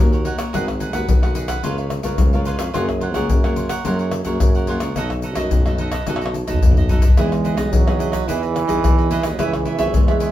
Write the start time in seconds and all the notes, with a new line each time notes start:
Already playing: A#4 C#5
0.00 D#2 A#2 A#3 C#4 F#4
0.12 A#4 C#5 F#5, pandeiro, shaker
0.25 D#4 A#4 C#5 F#5, pandeiro
0.38 A#4 C#5 F#5, pandeiro, tamborim, shaker
0.53 G#1 G#3 B3 D#4 F#4 G#4 A#4 B4 F#5, pandeiro, tamborim, shaker, surdo
0.68 muted cavaquinho stroke, pandeiro, tamborim, shaker, surdo
0.80 D#4 G#4 B4 F#5, pandeiro, shaker
0.93 D#2 B3 F#4 G#4 A#4 B4 F#5, pandeiro, tamborim, shaker, surdo
1.08 B1 D#3, pandeiro, shaker, surdo
1.22 B3 F#4 G#4 A#4 B4 F#5, pandeiro, tamborim, shaker
1.35 D#4 G#4 B4 F#5, pandeiro, shaker
1.48 G#4 B4 F#5, pandeiro, tamborim, shaker, surdo
1.63 C#2 C#3 B3 F4 A#4 B4 C#5 F5, pandeiro, shaker, surdo
1.78 B4 C#5 F5, pandeiro, shaker
1.90 muted cavaquinho stroke, pandeiro, tamborim, shaker
2.03 C#2 B3 F4 A#4 B4 C#5 F5, pandeiro, shaker, surdo
2.18 C#2 G#2, pandeiro, tamborim, shaker, surdo
2.33 B3 F4 A#4 B4 C#5 F5, pandeiro, shaker
2.45 F4 B4 C#5 F5, pandeiro, shaker
2.59 F2 B4 C#5 F5, pandeiro, tamborim, shaker
2.74 F#2 F#3 A#3 F4 G#4 A#4 C#5 F#5, pandeiro, tamborim, shaker, surdo
2.89 muted cavaquinho stroke, pandeiro, tamborim, shaker, surdo
3.01 F4 A#4 C#5 F#5, pandeiro
3.14 C#2 A#3 F4 G#4 A#4 C#5 F#5, pandeiro, tamborim, shaker, surdo
3.29 F#2 C#3, pandeiro, shaker, surdo
3.44 A#3 F4 G#4 A#4 C#5 F#5, pandeiro, tamborim, shaker
3.56 F4 A#4 C#5 F#5, pandeiro, shaker
3.69 A#4 C#5 F#5, pandeiro, tamborim, shaker, surdo
3.85 F#2 F#3 A#3 F4 G#4 A#4 C#5 F#5, pandeiro, shaker, surdo
3.99 A#4 C#5 F#5, pandeiro, shaker
4.11 muted cavaquinho stroke, pandeiro, tamborim, shaker
4.25 F#2 A#3 F4 G#4 A#4 C#5 F#5, pandeiro, shaker, surdo
4.40 F#2 C#3, pandeiro, tamborim, shaker, surdo
4.55 A#4 C#5 F#5, pandeiro, shaker
4.67 A#3 F4 G#4 A#4 C#5 F#5, pandeiro, surdo
4.80 C#2 A#4 C#5 F#5, pandeiro, tamborim, shaker
4.96 B1 B2 A3 D#4 F#4 A4 B4 D#5, pandeiro, tamborim, shaker, surdo
5.10 muted cavaquinho stroke, pandeiro, tamborim, shaker, surdo
5.22 D#4 A4 B4 D#5, pandeiro, shaker
5.35 F#2 A3 D#4 F#4 A4 B4 D#5, pandeiro, tamborim, shaker, surdo
5.51 B1 F#2, pandeiro, shaker, surdo
5.66 A3 D#4 F#4 A4 B4 D#5, pandeiro, tamborim, shaker
5.78 D#4 A4 B4 D#5, pandeiro
5.92 A4 B4 D#5, pandeiro, tamborim, shaker, surdo
6.07 B1 B2 A3 D#4 F#4 A4 B4 D#5, pandeiro, tamborim, shaker, surdo
6.16 tamborim
6.21 A4 B4 D#5, pandeiro, shaker
6.26 tamborim
6.34 muted cavaquinho stroke, pandeiro, shaker
6.47 B1 A3 D#4 F#4 A4 B4 D#5, pandeiro, shaker, surdo
6.53 surdo
6.62 B1 F#2, pandeiro, shaker, surdo
6.72 surdo
6.77 A4 B4 D#5, pandeiro, shaker
6.89 A3 D#4 F#4 A4 B4 D#5, pandeiro, shaker, surdo
6.99 D#5, pandeiro, shaker, surdo
7.03 A4 B4
7.08 surdo
7.17 E2 E3 G#3 B3 D#4 E4 G#4 B4 D#5, pandeiro, tamborim, shaker, surdo
7.32 muted cavaquinho stroke, pandeiro, tamborim, shaker, surdo
7.44 E4 G#4 B4 D#5, pandeiro, shaker
7.57 B1 B3 D#4 G#4 B4 D#5, pandeiro, tamborim, shaker, surdo
7.72 E2 B2 F#3, pandeiro, shaker, surdo
7.87 B3 D#4 G#4 B4 D#5, pandeiro, tamborim, shaker
7.99 E4 G#4 B4 D#5, pandeiro, shaker
8.12 G#4 B4 D#5, pandeiro, tamborim, shaker, surdo
8.27 E2 E3 B3 D#4 E4 G#4 B4 D#5, pandeiro, shaker, surdo
8.42 G#4 B4 D#5, pandeiro, shaker
8.54 muted cavaquinho stroke, pandeiro, tamborim, shaker
8.67 E2 B3 D#4 G#4 B4 D#5, pandeiro, shaker, surdo
8.83 E2 B2, pandeiro, tamborim, shaker, surdo
8.98 G#4 B4 D#5, pandeiro, shaker
9.10 B3 D#4 E4 G#4 B4 D#5, pandeiro, shaker
9.23 D#2 G#4 B4 D#5, pandeiro, tamborim, shaker
9.32 F#3
9.39 C#2 C#3 E3 B3 E4 G#4 B4 C#5 E5, pandeiro, tamborim, shaker, surdo
9.53 muted cavaquinho stroke, pandeiro, tamborim, shaker, surdo
9.65 E4 B4 C#5 E5, pandeiro
9.78 G#1 B3 E4 G#4 B4 C#5 E5, pandeiro, tamborim, shaker, surdo
9.94 E2 G#2 G#3, pandeiro, shaker, surdo
10.08 B3 E4 G#4 B4 C#5 E5, pandeiro, tamborim, shaker
10.20 E4 B4 C#5 E5, pandeiro, shaker